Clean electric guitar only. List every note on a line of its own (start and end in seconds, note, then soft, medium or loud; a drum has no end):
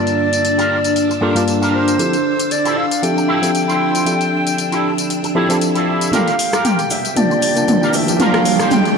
0.44 muted clean electric guitar stroke soft
0.57 0.77 F4 medium
0.57 0.77 G4 medium
0.57 0.77 A#4 medium
0.95 muted clean electric guitar stroke soft
1.09 muted clean electric guitar stroke loud
1.21 1.41 F4 loud
1.21 1.42 G4 loud
1.21 1.42 A#4 loud
1.61 1.99 F4 medium
1.61 1.99 G4 medium
1.61 2.00 A#4 medium
2.50 muted clean electric guitar stroke soft
2.64 2.84 E4 medium
2.64 2.84 F4 medium
2.64 2.84 G4 medium
2.64 2.84 A4 medium
3.02 muted clean electric guitar stroke soft
3.16 muted clean electric guitar stroke loud
3.28 3.48 E4 loud
3.28 3.49 F4 loud
3.28 3.49 G4 loud
3.28 3.49 A4 loud
3.68 4.13 E4 medium
3.68 4.13 F4 medium
3.68 4.13 G4 medium
3.68 4.14 C5 medium
4.57 muted clean electric guitar stroke soft
4.71 4.90 E4 medium
4.71 4.91 F4 medium
4.71 4.91 G4 medium
4.71 4.91 A4 loud
5.09 muted clean electric guitar stroke soft
5.23 muted clean electric guitar stroke loud
5.35 5.55 E4 loud
5.35 5.56 F4 loud
5.35 5.56 G4 loud
5.35 5.56 A4 loud
5.75 6.13 E4 medium
5.75 6.11 F4 medium
5.75 6.12 G4 medium
5.75 6.13 A4 medium
6.12 6.33 F4 loud
6.12 6.33 G4 loud
6.12 6.34 A#4 loud
6.52 6.79 F4 medium
6.52 6.79 G4 medium
6.52 6.80 A#4 medium
7.04 muted clean electric guitar stroke soft
7.16 muted clean electric guitar stroke soft
7.30 muted clean electric guitar stroke loud
7.42 muted clean electric guitar stroke soft
7.68 muted clean electric guitar stroke medium
7.82 7.94 F4 medium
7.82 7.94 G4 medium
7.82 7.95 A#4 medium
8.08 muted clean electric guitar stroke soft
8.20 8.40 F4 loud
8.20 8.40 G4 loud
8.20 8.41 A#4 loud
8.59 8.86 F4 medium
8.59 8.86 G4 medium
8.59 8.86 C5 medium